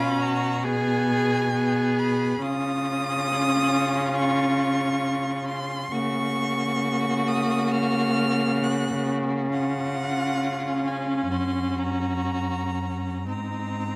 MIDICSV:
0, 0, Header, 1, 5, 480
1, 0, Start_track
1, 0, Key_signature, -5, "major"
1, 0, Tempo, 877193
1, 1318, Time_signature, 4, 2, 24, 8
1, 2750, Tempo, 896861
1, 5630, Tempo, 930233
1, 6590, Tempo, 1010101
1, 7393, End_track
2, 0, Start_track
2, 0, Title_t, "Violin"
2, 0, Program_c, 0, 40
2, 0, Note_on_c, 0, 83, 116
2, 116, Note_on_c, 0, 82, 104
2, 124, Note_off_c, 0, 83, 0
2, 344, Note_on_c, 0, 80, 118
2, 352, Note_off_c, 0, 82, 0
2, 1086, Note_on_c, 0, 83, 104
2, 1095, Note_off_c, 0, 80, 0
2, 1324, Note_on_c, 0, 87, 127
2, 1332, Note_off_c, 0, 83, 0
2, 2272, Note_on_c, 0, 85, 103
2, 2281, Note_off_c, 0, 87, 0
2, 2989, Note_off_c, 0, 85, 0
2, 2992, Note_on_c, 0, 84, 106
2, 3227, Note_on_c, 0, 85, 119
2, 3235, Note_off_c, 0, 84, 0
2, 3957, Note_on_c, 0, 87, 110
2, 3965, Note_off_c, 0, 85, 0
2, 4187, Note_on_c, 0, 89, 114
2, 4195, Note_off_c, 0, 87, 0
2, 4684, Note_on_c, 0, 90, 97
2, 4692, Note_off_c, 0, 89, 0
2, 4920, Note_off_c, 0, 90, 0
2, 5156, Note_on_c, 0, 78, 116
2, 5869, Note_on_c, 0, 80, 83
2, 5877, Note_off_c, 0, 78, 0
2, 6100, Note_on_c, 0, 84, 88
2, 6108, Note_off_c, 0, 80, 0
2, 6341, Note_on_c, 0, 82, 87
2, 6349, Note_off_c, 0, 84, 0
2, 7067, Note_off_c, 0, 82, 0
2, 7080, Note_on_c, 0, 82, 84
2, 7393, Note_off_c, 0, 82, 0
2, 7393, End_track
3, 0, Start_track
3, 0, Title_t, "Violin"
3, 0, Program_c, 1, 40
3, 0, Note_on_c, 1, 65, 82
3, 107, Note_off_c, 1, 65, 0
3, 110, Note_on_c, 1, 66, 80
3, 347, Note_on_c, 1, 68, 82
3, 356, Note_off_c, 1, 66, 0
3, 589, Note_off_c, 1, 68, 0
3, 599, Note_on_c, 1, 68, 81
3, 836, Note_off_c, 1, 68, 0
3, 840, Note_on_c, 1, 68, 79
3, 1311, Note_off_c, 1, 68, 0
3, 1329, Note_on_c, 1, 65, 89
3, 3215, Note_off_c, 1, 65, 0
3, 3231, Note_on_c, 1, 66, 84
3, 5132, Note_off_c, 1, 66, 0
3, 5151, Note_on_c, 1, 65, 81
3, 6076, Note_off_c, 1, 65, 0
3, 6095, Note_on_c, 1, 66, 67
3, 7046, Note_off_c, 1, 66, 0
3, 7064, Note_on_c, 1, 63, 59
3, 7393, Note_off_c, 1, 63, 0
3, 7393, End_track
4, 0, Start_track
4, 0, Title_t, "Viola"
4, 0, Program_c, 2, 41
4, 0, Note_on_c, 2, 61, 85
4, 352, Note_on_c, 2, 59, 80
4, 360, Note_off_c, 2, 61, 0
4, 834, Note_off_c, 2, 59, 0
4, 837, Note_on_c, 2, 59, 81
4, 1309, Note_off_c, 2, 59, 0
4, 1312, Note_on_c, 2, 61, 87
4, 3207, Note_off_c, 2, 61, 0
4, 3233, Note_on_c, 2, 58, 86
4, 5133, Note_off_c, 2, 58, 0
4, 5152, Note_on_c, 2, 61, 78
4, 7046, Note_off_c, 2, 61, 0
4, 7066, Note_on_c, 2, 60, 62
4, 7393, Note_off_c, 2, 60, 0
4, 7393, End_track
5, 0, Start_track
5, 0, Title_t, "Cello"
5, 0, Program_c, 3, 42
5, 0, Note_on_c, 3, 47, 83
5, 1294, Note_off_c, 3, 47, 0
5, 1317, Note_on_c, 3, 49, 90
5, 3209, Note_off_c, 3, 49, 0
5, 3230, Note_on_c, 3, 49, 92
5, 6076, Note_off_c, 3, 49, 0
5, 6093, Note_on_c, 3, 42, 68
5, 7063, Note_on_c, 3, 44, 64
5, 7070, Note_off_c, 3, 42, 0
5, 7393, Note_off_c, 3, 44, 0
5, 7393, End_track
0, 0, End_of_file